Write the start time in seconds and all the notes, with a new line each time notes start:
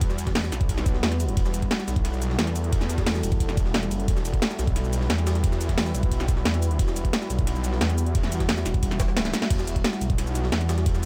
Already playing: E2 G3 E4 F#4 B4
0.01 kick, closed hi-hat, ride
0.10 snare, shaker
0.18 closed hi-hat, ride, shaker
0.27 kick, snare, closed hi-hat
0.35 snare, closed hi-hat, open hi-hat
0.44 snare, shaker
0.52 B1, snare, closed hi-hat, ride, shaker
0.61 kick, closed hi-hat
0.69 kick, closed hi-hat, ride
0.78 snare, shaker
0.86 kick, closed hi-hat, ride, shaker
0.95 snare
1.03 E2, snare, closed hi-hat, ride
1.12 snare, closed hi-hat, shaker
1.20 closed hi-hat, ride, shaker
1.28 closed hi-hat
1.37 E1 A4, kick, closed hi-hat, ride
1.45 snare, shaker
1.54 closed hi-hat, ride, shaker
1.62 kick, closed hi-hat
1.71 snare, closed hi-hat, ride
1.79 snare, shaker
1.88 B1, snare, closed hi-hat, ride, shaker
1.96 kick, closed hi-hat
2.05 snare, closed hi-hat, ride
2.13 shaker
2.22 closed hi-hat, ride, shaker
2.30 snare
2.39 E2, snare, closed hi-hat, ride
2.47 snare, closed hi-hat, shaker
2.56 closed hi-hat, ride, shaker
2.64 closed hi-hat
2.73 kick, closed hi-hat, ride
2.81 snare, shaker
2.89 closed hi-hat, ride, shaker
2.98 kick, snare, closed hi-hat
3.06 snare, closed hi-hat, open hi-hat
3.15 snare, shaker
3.23 E1, closed hi-hat, ride, shaker
3.32 kick, closed hi-hat
3.40 kick, closed hi-hat, ride
3.49 snare, shaker
3.57 kick, closed hi-hat, ride, shaker
3.66 snare
3.74 E1, snare, closed hi-hat, ride
3.83 snare, closed hi-hat, shaker
3.91 F#1, closed hi-hat, ride, shaker
4.00 closed hi-hat
4.08 E1 B4, kick, closed hi-hat, ride
4.17 snare, shaker
4.25 closed hi-hat, ride, shaker
4.34 kick, closed hi-hat
4.42 snare, closed hi-hat, ride
4.50 snare, shaker
4.59 B1, snare, closed hi-hat, ride, shaker
4.67 kick, closed hi-hat
4.76 snare, closed hi-hat, ride
4.84 shaker
4.93 closed hi-hat, ride, shaker
5.01 snare
5.10 E2, snare, closed hi-hat, ride
5.18 snare, closed hi-hat, shaker
5.27 snare, closed hi-hat, ride, shaker
5.35 snare, closed hi-hat
5.44 kick, closed hi-hat, ride
5.52 snare, shaker
5.61 closed hi-hat, ride, shaker
5.69 kick, snare, closed hi-hat
5.78 snare, closed hi-hat, open hi-hat
5.86 snare, shaker
5.95 B1, closed hi-hat, ride, shaker
6.03 kick, closed hi-hat
6.12 kick, closed hi-hat, ride
6.20 snare, shaker
6.28 kick, closed hi-hat, ride, shaker
6.37 snare
6.45 E2, snare, closed hi-hat, ride
6.54 snare, closed hi-hat, shaker
6.62 closed hi-hat, ride, shaker
6.71 closed hi-hat
6.79 E1 E5, kick, closed hi-hat, ride
6.88 snare, shaker
6.96 closed hi-hat, ride, shaker
7.05 kick, closed hi-hat
7.13 snare, closed hi-hat, ride
7.22 snare, shaker
7.30 B1, closed hi-hat, ride, shaker
7.39 kick, closed hi-hat
7.47 snare, closed hi-hat, ride
7.56 shaker
7.64 closed hi-hat, ride, shaker
7.73 snare
7.81 E2, snare, closed hi-hat, ride
7.90 snare, closed hi-hat, shaker
7.98 closed hi-hat, shaker
8.06 closed hi-hat
8.15 kick, closed hi-hat, ride
8.23 snare, shaker
8.32 closed hi-hat, ride, shaker
8.40 kick, snare, closed hi-hat
8.49 snare, closed hi-hat, open hi-hat
8.57 snare, shaker
8.66 E1, snare, closed hi-hat, ride, shaker
8.74 kick, closed hi-hat
8.83 E1, kick, closed hi-hat, ride
8.91 snare, shaker
9.00 kick, snare, closed hi-hat, ride, shaker
9.08 snare
9.17 snare, closed hi-hat, ride
9.25 snare, closed hi-hat, shaker
9.34 snare, closed hi-hat, ride, shaker
9.42 snare, closed hi-hat
9.50 E1 B4, kick, closed hi-hat, crash, ride
9.59 snare, shaker
9.67 closed hi-hat, ride, shaker
9.76 kick, closed hi-hat
9.84 snare, closed hi-hat, ride
9.93 snare, shaker
10.01 B1, closed hi-hat, ride, shaker
10.10 kick, closed hi-hat
10.18 snare, closed hi-hat, ride
10.27 shaker
10.35 closed hi-hat, ride, shaker
10.44 snare
10.52 E2, snare, closed hi-hat, ride
10.61 snare, closed hi-hat, shaker
10.69 snare, closed hi-hat, ride, shaker
10.78 snare, closed hi-hat
10.86 kick, closed hi-hat, ride
10.95 snare, shaker